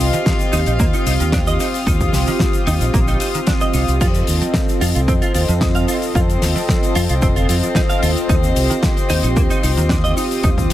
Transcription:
Already playing: C4 F4 G4 D#5 F5
0.00 C2, open hi-hat, shaker
0.13 D#3, closed hi-hat, shaker
0.26 kick, snare, closed hi-hat, shaker
0.39 closed hi-hat, shaker
0.53 D#2 D#4, open hi-hat, shaker
0.66 A#1 D#4, closed hi-hat, shaker
0.80 D#2 A#3, kick, closed hi-hat, shaker
0.93 D#4, closed hi-hat, shaker
1.05 C2 C4 D#4 F4 G4 D#6, open hi-hat, shaker
1.20 D#2 D#3, closed hi-hat, shaker
1.32 D4, kick, snare, closed hi-hat, shaker
1.47 D#5, closed hi-hat, shaker
1.60 D#4, open hi-hat, shaker
1.74 open hi-hat, shaker
1.86 D#2 C4 D#4 F4 G4 D#6, kick, closed hi-hat, shaker
2.01 kick, closed hi-hat, shaker
2.13 C2, snare, open hi-hat, shaker
2.27 D#3, open hi-hat, shaker
2.39 kick, snare, closed hi-hat, shaker
2.53 closed hi-hat, shaker
2.67 D#2 D#4, open hi-hat, shaker
2.81 A#1 D#4, closed hi-hat, shaker
2.94 A#1 A#3, kick, closed hi-hat, shaker
3.08 D#4, closed hi-hat, shaker
3.19 C4 D#4 F4 G4 D#6, open hi-hat, shaker
3.34 D#3, closed hi-hat, shaker
3.47 D4, kick, snare, closed hi-hat, shaker
3.61 D#5, closed hi-hat, shaker
3.74 C2 D#4, open hi-hat, shaker
3.88 C2, closed hi-hat, shaker
4.00 F2 C4 F4 A4 C5 D#5, kick, closed hi-hat, crash, shaker
4.14 closed hi-hat, shaker
4.27 D#2, open hi-hat, shaker
4.41 F3, closed hi-hat, shaker
4.54 kick, snare, closed hi-hat, shaker
4.69 closed hi-hat, shaker
4.81 F2 F4, open hi-hat, shaker
4.95 C2 F4, closed hi-hat, shaker
5.08 F2 C4, kick, closed hi-hat, shaker
5.22 F4, closed hi-hat, shaker
5.34 D#2 C4 F4 A4 D#5, open hi-hat, shaker
5.48 F2 F3, closed hi-hat, shaker
5.61 D#4, kick, snare, closed hi-hat, shaker
5.75 F5, closed hi-hat, shaker
5.88 F4, open hi-hat, shaker
6.02 open hi-hat, shaker
6.14 F2 C4 F4 A4 D#5, kick, closed hi-hat, shaker
6.29 closed hi-hat, shaker
6.42 D#2, snare, open hi-hat, shaker
6.56 F3, open hi-hat, shaker
6.69 kick, snare, closed hi-hat, shaker
6.83 closed hi-hat, shaker
6.95 F2 F4, open hi-hat, shaker
7.09 C2 F4, closed hi-hat, shaker
7.22 F1 C4, kick, closed hi-hat, shaker
7.36 F4, closed hi-hat, shaker
7.48 F2 C4 F4 A4 D#5, open hi-hat, shaker
7.63 F3, closed hi-hat, shaker
7.75 D#4, kick, snare, closed hi-hat, shaker
7.89 F5, closed hi-hat, shaker
8.02 D#2 F4, open hi-hat, shaker
8.17 closed hi-hat, shaker
8.28 D#2 C4 D#4 F4 G4 D#5, kick, closed hi-hat, shaker
8.43 closed hi-hat, shaker
8.56 C2, open hi-hat, shaker
8.70 D#3, closed hi-hat, shaker
8.83 kick, snare, closed hi-hat, shaker
8.97 closed hi-hat, shaker
9.10 D#2 D#4, open hi-hat, shaker
9.23 A#1 D#4, closed hi-hat, shaker
9.36 D#2 A#3, kick, closed hi-hat, shaker
9.50 D#4, closed hi-hat, shaker
9.62 C2 C4 D#4 F4 G4 D#6, open hi-hat, shaker
9.77 D#2 D#3, closed hi-hat, shaker
9.89 D4, kick, snare, closed hi-hat, shaker
10.04 D#5, closed hi-hat, shaker
10.17 D#4, open hi-hat, shaker
10.31 open hi-hat, shaker
10.43 D#2 C4 D#4 F4 G4 D#6, kick, closed hi-hat, shaker
10.58 kick, closed hi-hat, shaker
10.70 snare, open hi-hat

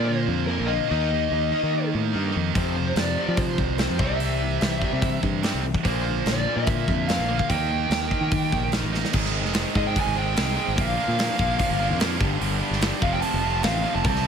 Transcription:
Already playing: A#2 F3 A#3
0.05 A#2 D3 C5
0.27 F2 A#2 D3
0.47 A#2 D3 A#3 A#4
0.60 A#1
0.66 A#2 D3 F3 A#3 D#5
0.90 D#2 D#3 A#3 D#4
1.11 D#3 A#3
1.31 D#2 D#3 A#3
1.52 D#3 A#3 D#4
1.63 D#3
1.73 D#3 A#3
1.94 A2 D#3 A#3
2.13 G2 D#3 A#3 D#4
2.32 F2 D#3 A#3 D#4
2.55 F2 C3 F3 C5, kick, open hi-hat
2.76 F2 C3
2.96 F2 C3 D5, snare, open hi-hat
3.17 F2 C3 F3
3.28 F3
3.37 F2 C3 C5, kick, open hi-hat
3.58 C2 F2 C3, kick
3.78 F2 C3 F3 C5, snare, open hi-hat
3.90 F2
3.99 C2 C3 E3 G3 C4 E5, kick
4.20 C3 E3 G3, open hi-hat
4.41 C3 E3
4.61 C2 C3 E3, snare, open hi-hat
4.81 C3 E3 G3, kick
4.93 C3
5.02 C3 E3, kick, open hi-hat
5.23 G2 C3 E3, kick
5.43 C3 E3 G3 C4, snare, open hi-hat
5.54 C2
5.64 C3 E3
5.74 kick
5.85 A#1 A#2 D3 F3 A#3 C5, kick, open hi-hat
6.07 A#2 D3
6.26 A#1 A#2 D3 D5, snare, open hi-hat
6.47 A#2 D3 A#3
6.56 A#2 E5
6.67 A#2 D3, kick, open hi-hat
6.88 F2 A#2 D3, kick
7.08 A#2 D3 A#3 F5, snare, open hi-hat
7.19 A#1
7.28 A#2 D3 F3 A#3
7.38 F5, kick
7.49 D#2 D#3 A#3 D#4 G5, kick, open hi-hat
7.71 D#3 A#3
7.90 D#2 D#3 A#3, snare, open hi-hat
8.11 D#3 A#3 D#4, kick
8.21 D#3
8.31 D#3 A#3, kick, open hi-hat
8.52 A#1 D#3 A#3, kick
8.72 D#3 A#3 D#4, snare, open hi-hat
8.83 A1
8.92 D#3 A#3 D#4, snare
9.05 snare
9.13 G#1 G#2 D#3 G#3 C4 D#4 G#4, kick, crash
9.25 snare
9.33 G#2 D#3 G#3 C4 D#4 G#4
9.45 F1, snare
9.53 G#2 D#3 G#3 C4 D#4 G#4, snare, open hi-hat
9.74 G#2 D#3 G#3 C4 D#4 G#4 D#5, kick
9.87 G5
9.95 G#2 D#3 G#3 C4 D#4 G#4, kick, open hi-hat
9.99 G#5
10.07 G#1
10.15 G#2 D#3 G#3 C4 D#4 G#4 G5
10.35 C2 G#2 D#3 G#3 C4 D#4 G#4, snare, open hi-hat
10.54 G#2 D#3 G#3 C4 D#4 G#4
10.68 G#1
10.77 A#1 A#2 D3 F3 A#3 D4 A#4 F5, kick, open hi-hat
10.97 A#2 D3 F3 A#3 D4 A#4
11.08 A#2
11.18 A#2 D3 F3 A#3 D4 A#4, snare, open hi-hat
11.37 A#1 A#2 D3 F3 A#3 D4 A#4, kick
11.59 A#2 D3 F3 A#3 D4 A#4, kick, open hi-hat
11.70 G1
11.80 A#2 D3 F3 A#3 D4 A#4
11.90 F2
11.99 A#2 D3 F3 A#3 D4 A#4, snare, open hi-hat
12.19 G1 G2 D3 G3 B3 D4 G4, kick
12.40 G1 G2 D3 G3 B3 D4 G4, open hi-hat
12.59 G2 D3 G3 B3 D4 G4
12.71 G1, snare
12.80 G2 D3 G3 B3 D4 G4, snare, open hi-hat
13.00 F1 F2 C3 F3 A3 C4 F4 F5, kick
13.13 G5
13.21 F2 C3 F3 A3 C4 F4 A5, open hi-hat
13.34 F1
13.41 F2 C3 F3 A3 C4 F4
13.61 A1 F2 C3 F3 A3 C4 F4 F5, snare, open hi-hat
13.82 F2 C3 F3 A3 C4 F4
13.94 F1 A5
14.03 C2 C3 E3 G3 C4 E4 A5, kick, open hi-hat
14.16 snare
14.24 C3

